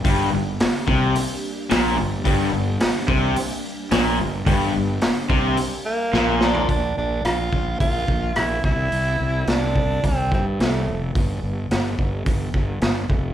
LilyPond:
<<
  \new Staff \with { instrumentName = "Tenor saxophone" } { \time 4/4 \key g \minor \tempo 4 = 108 r1 | r1 | r2 r8 bes4 d'8 | \key c \mixolydian d'8 d'8 f'4 f'4 e'8 e'8~ |
e'4 d'4 c'8 c'8 a8. r16 | r1 | }
  \new Staff \with { instrumentName = "String machine" } { \time 4/4 \key g \minor \tuplet 3/2 { <aes b ees' aes'>8 <g bes d' g'>4~ } <g bes d' g'>2. | <g bes d' g'>1 | <g bes d' g'>1 | \key c \mixolydian r1 |
r1 | r1 | }
  \new Staff \with { instrumentName = "Distorted electric guitar" } { \clef bass \time 4/4 \key g \minor g,8 g,8 r8 c8 r4 bes,8 g,8 | g,8 g,8 r8 c8 r4 bes,8 g,8 | g,8 g,8 r8 c8 r4 bes,4 | \key c \mixolydian r1 |
r1 | r1 | }
  \new Staff \with { instrumentName = "Overdriven electric guitar" } { \clef bass \time 4/4 \key g \minor g,8 g,8 r8 c8 r4 bes,8 g,8 | g,8 g,8 r8 c8 r4 bes,8 g,8 | g,8 g,8 r8 c8 r4 bes,4 | \key c \mixolydian r1 |
r1 | r1 | }
  \new Staff \with { instrumentName = "Fingered electric bass" } { \clef bass \time 4/4 \key g \minor g,,8 g,,8 r8 c,8 r4 bes,,8 g,,8 | g,,8 g,,8 r8 c,8 r4 bes,,8 g,,8 | g,,8 g,,8 r8 c,8 r4 bes,,4 | \key c \mixolydian bes,,8 bes,,8 bes,,8 bes,,8 bes,,8 bes,,8 bes,,8 c,8 |
c,8 c,8 c,4 c,8 g,8 c,8 f,,8 | g,,8 g,,8 g,,8 g,,8 g,,8 g,,8 g,,8 f,,8 | }
  \new DrumStaff \with { instrumentName = "Drums" } \drummode { \time 4/4 <hho bd>4 <hho sn>8 bd8 hho4 <hho sn>4 | <hho bd>4 <hho sn>8 bd8 hho4 <hho sn>4 | <hho bd>4 <hho sn>8 bd8 hho4 sn8 sn16 tomfh16 | <hho bd>4 <hho ss>8 bd8 <hho bd>8 bd8 <hho ss>8 bd8 |
hho4 <hho sn>8 bd8 <hho bd>8 bd8 <hho sn>4 | <hho bd>4 <hho sn>8 bd8 <hho bd>8 bd8 <hho sn>8 bd8 | }
>>